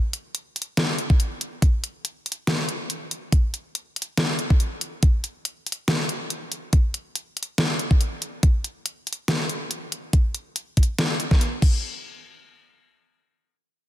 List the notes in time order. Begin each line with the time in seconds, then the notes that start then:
0.13 closed hi-hat
0.35 closed hi-hat
0.56 closed hi-hat
0.62 closed hi-hat
0.77 snare, closed hi-hat
0.98 closed hi-hat
1.10 kick
1.20 closed hi-hat
1.41 closed hi-hat
1.62 kick, closed hi-hat
1.84 closed hi-hat
2.05 closed hi-hat
2.26 closed hi-hat
2.32 closed hi-hat
2.47 snare, closed hi-hat
2.69 closed hi-hat
2.90 closed hi-hat
3.11 closed hi-hat
3.32 kick, closed hi-hat
3.54 closed hi-hat
3.75 closed hi-hat
3.96 closed hi-hat
4.02 closed hi-hat
4.17 snare, closed hi-hat
4.39 closed hi-hat
4.50 kick
4.60 closed hi-hat
4.81 closed hi-hat
5.03 kick, closed hi-hat
5.24 closed hi-hat
5.45 closed hi-hat
5.67 closed hi-hat
5.72 closed hi-hat
5.88 snare, closed hi-hat
6.09 closed hi-hat
6.30 closed hi-hat
6.52 closed hi-hat
6.73 kick, closed hi-hat
6.94 closed hi-hat
7.15 closed hi-hat
7.37 closed hi-hat
7.43 closed hi-hat
7.58 snare, closed hi-hat
7.79 closed hi-hat
7.91 kick
8.01 closed hi-hat
8.22 closed hi-hat
8.43 kick, closed hi-hat
8.64 closed hi-hat
8.86 closed hi-hat
9.07 closed hi-hat
9.13 closed hi-hat
9.28 snare, closed hi-hat
9.49 closed hi-hat
9.71 closed hi-hat
9.92 closed hi-hat
10.13 kick, closed hi-hat
10.35 closed hi-hat
10.56 closed hi-hat
10.77 kick, closed hi-hat
10.83 closed hi-hat
10.99 snare, closed hi-hat
11.20 closed hi-hat
11.31 kick, snare
11.41 closed hi-hat
11.62 kick, crash